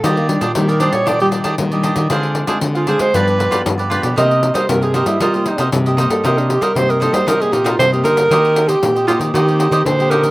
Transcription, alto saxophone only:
\new Staff \with { instrumentName = "Alto saxophone" } { \time 4/4 \key c \minor \tempo 4 = 116 g'16 bes16 d'16 f'16 g'16 bes'16 c''16 des''16 d''16 g'16 r4. | r4 r16 f'16 aes'16 c''16 b'4 r4 | ees''8. c''16 bes'16 aes'16 g'16 e'16 f'4 r8. a'16 | bes'16 d'16 g'16 bes'16 c''16 bes'16 a'16 c''16 bes'16 aes'16 g'16 f'16 c''8 bes'8~ |
\key ees \major bes'8. g'8. f'8 g'4 c''8 bes'8 | }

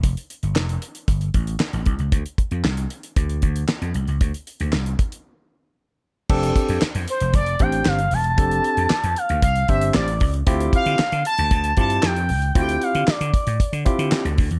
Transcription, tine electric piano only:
\new Staff \with { instrumentName = "Tine electric piano" } { \time 4/4 \key f \major \tempo 4 = 115 r1 | r1 | r1 | <c' d' g' a'>4 r4. <c' d' g' c''>8 r4 |
<c' d' g' a'>4 r4. <c' d' g' c''>8 r4 | <c' e' f' g'>4 r4. <c' e' f' g'>8 r4 | <c' e' f' ges' g'>4 r4. <c' e' f' g'>8 r4 | }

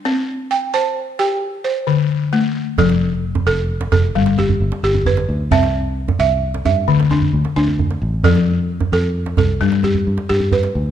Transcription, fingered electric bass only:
\new Staff \with { instrumentName = "Fingered electric bass" } { \clef bass \time 12/8 \key f \lydian \tempo 4. = 88 r1. | f,,4. f,,4 f,,8 g,,4 g,,16 r16 g,,4 d,8 | c,4. c,4 g,8 d,4 d,16 r16 d,4 a,,8 | f,4. f,4 c,8 g,4 g,16 r16 g,4 d,8 | }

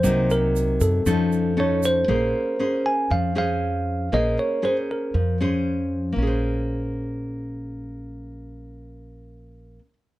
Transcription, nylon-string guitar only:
\new Staff \with { instrumentName = "Nylon-string guitar" } { \time 4/4 \key bes \minor \tempo 4 = 118 << { <ges bes ees'>2 <des' ees' a'>4 <des' ees' a'>4 | <des' aes' c''>4 <des' aes' c''>4. <des' aes' c''>4. | <des' aes' c''>4 <des' aes' c''>4 r8 <des' aes' c''>4. | <bes des' aes' c''>1~ |
<bes des' aes' c''>1 | } \\ { c2 f2 | bes2 f2 | bes2 f2 | r1 |
r1 | } >> }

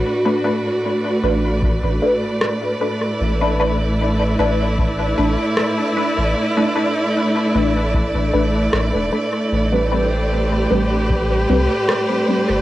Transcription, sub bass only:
\new Staff \with { instrumentName = "Sub bass" } { \clef bass \time 4/4 \key b \phrygian \tempo 4 = 76 r4. a,,8. a,,16 r4. | a,,4. a,,4 a,,16 r4 a,,16 | r4. a,,8. a,,16 a,,8 a,,16 e,,16 r8 | a,,4. a,,4 c,16 r4 g,,16 | }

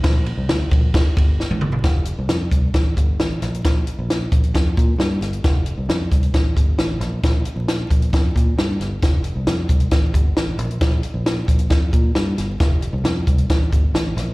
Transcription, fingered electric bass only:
\new Staff \with { instrumentName = "Fingered electric bass" } { \clef bass \time 4/4 \key f \major \tempo 4 = 134 bes,,8. c,16 d,8 bes,,8 f,,16 r16 g,,8. a,,16 g,,8 | f,,8. c,16 f,8 c,8 a,,8 g,,8 a,,8 bes,,8 | bes,,8 r16 bes,,8. bes,,8 f,8 bes,8 g,8 g,,8 | f,,8. c,16 f,8 c,8 a,,8 g,,8 a,,8 bes,,8 |
bes,,8 r16 bes,,8. bes,,8 f,8 bes,8 g,8 g,,8 | f,,8. c,16 f,8 c,8 a,,8 g,,8 a,,8 bes,,8 | bes,,8 r16 bes,,8. bes,,8 f,8 bes,8 g,8 g,,8 | f,,8. c,16 f,8 c,8 a,,8 g,,8 a,,8 bes,,8 | }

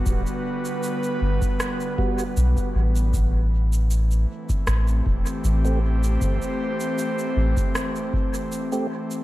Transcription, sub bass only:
\new Staff \with { instrumentName = "Sub bass" } { \clef bass \time 4/4 \key a \dorian \tempo 4 = 78 d,,8 r4 g,,8 r4 b,,8 a,,8~ | a,,4. r8 a,,8 e,,8 a,,4 | g,,8 r4 a,,8 r2 | }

